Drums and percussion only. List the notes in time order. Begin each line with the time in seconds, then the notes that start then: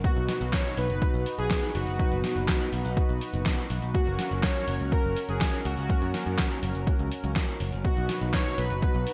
0.04 kick, closed hi-hat, cabasa
0.16 closed hi-hat
0.29 snare, open hi-hat, cabasa
0.41 closed hi-hat, cabasa
0.53 kick, snare, clap, closed hi-hat, cabasa
0.65 closed hi-hat
0.77 open hi-hat, cabasa
0.90 closed hi-hat, cabasa
1.02 kick, closed hi-hat, cabasa
1.26 open hi-hat, cabasa
1.38 closed hi-hat, cabasa
1.51 kick, snare, clap, closed hi-hat, cabasa
1.75 open hi-hat, cabasa
1.87 closed hi-hat, cabasa
1.99 kick, closed hi-hat, cabasa
2.12 closed hi-hat
2.24 snare, open hi-hat, cabasa
2.36 closed hi-hat, cabasa
2.48 kick, snare, clap, closed hi-hat, cabasa
2.61 closed hi-hat
2.73 open hi-hat, cabasa
2.85 closed hi-hat, cabasa
2.97 kick, closed hi-hat, cabasa
3.21 open hi-hat, cabasa
3.34 closed hi-hat, cabasa
3.46 kick, snare, clap, closed hi-hat, cabasa
3.58 closed hi-hat
3.70 open hi-hat, cabasa
3.82 closed hi-hat, cabasa
3.94 kick, closed hi-hat, cabasa
4.07 closed hi-hat
4.19 snare, open hi-hat, cabasa
4.31 closed hi-hat, cabasa
4.43 kick, snare, clap, closed hi-hat, cabasa
4.55 closed hi-hat
4.68 open hi-hat, cabasa
4.80 closed hi-hat, cabasa
4.92 kick, closed hi-hat, cabasa
5.16 open hi-hat, cabasa
5.29 closed hi-hat, cabasa
5.41 kick, snare, clap, closed hi-hat, cabasa
5.65 open hi-hat, cabasa
5.77 closed hi-hat, cabasa
5.89 kick, closed hi-hat, cabasa
6.02 closed hi-hat
6.14 snare, open hi-hat, cabasa
6.26 closed hi-hat, cabasa
6.38 kick, snare, clap, closed hi-hat, cabasa
6.51 closed hi-hat
6.63 open hi-hat, cabasa
6.75 closed hi-hat, cabasa
6.87 kick, closed hi-hat, cabasa
7.12 open hi-hat, cabasa
7.24 closed hi-hat, cabasa
7.36 kick, snare, clap, closed hi-hat, cabasa
7.60 open hi-hat, cabasa
7.72 closed hi-hat, cabasa
7.85 kick, closed hi-hat, cabasa
7.97 closed hi-hat
8.09 snare, open hi-hat, cabasa
8.21 closed hi-hat, cabasa
8.33 kick, snare, clap, closed hi-hat, cabasa
8.46 closed hi-hat
8.58 open hi-hat, cabasa
8.70 closed hi-hat, cabasa
8.82 kick, closed hi-hat, cabasa
9.07 open hi-hat, cabasa